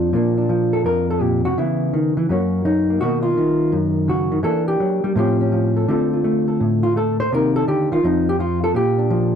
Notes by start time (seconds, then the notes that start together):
Already playing: F2 F3 A#3 D4 F4
0.13 A#2 F3 A#3 D4
0.38 D4
0.49 F3
0.73 A4
0.84 F2 A#4
1.10 A4
1.21 A#2 G4
1.45 C3 F#4
1.58 C#3 E3 B3 E4
1.93 D#3
2.17 E3
2.29 F#2 F#3 A#3 C#4 F#4
2.65 F#3 D#4
2.90 A#3
3.01 B2 D#3 A#3 D#4 F#4
3.23 F4
3.37 D#3
3.72 F#2
4.08 C#3 F#4
4.32 D#3
4.43 E3 A#3 D4 A4
4.68 G4
4.80 F#3
5.04 G3
5.15 A2 F3 C4 C#4 G4
5.41 C#4
5.52 F3
5.77 A4
5.88 D3 A3 C4 F4 A4
6.13 F4
6.24 A3
6.48 A4
6.60 A2
6.83 F4
6.96 A3 A4
7.20 C5
7.32 C3 D#3 A#3 D#4 A#4
7.56 A4
7.68 D3 G4
7.92 D#3 F4
8.03 F2 F3 C4 D#4
8.29 G4
8.39 F3 F4
8.64 A4
8.74 A#2 G4
8.98 D4
9.10 F3